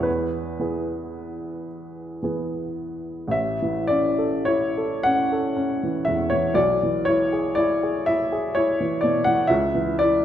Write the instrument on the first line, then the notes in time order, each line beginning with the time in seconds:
upright piano
Already playing: E2
0.03 B4
0.59 E3 B3 G#4
2.23 E3 B3 G#4
3.28 A1 E5
3.62 E3
3.87 C#4 D5
4.18 A4
4.45 E4 C#5
4.78 A4
5.03 C#4 F#5
5.32 A4
5.57 C#4
5.83 E3
6.05 E2 E5
6.30 E3 C#5
6.54 B1 D5
6.83 E3
7.05 E4 C#5
7.33 G#4
7.55 E4 D5
7.83 G#4
8.06 E4 E5
8.32 G#4
8.55 E4 C#5
8.81 E3
9.01 B2 D5
9.24 E3 F#5
9.47 C#2 E5
9.75 E3
9.99 E4 D5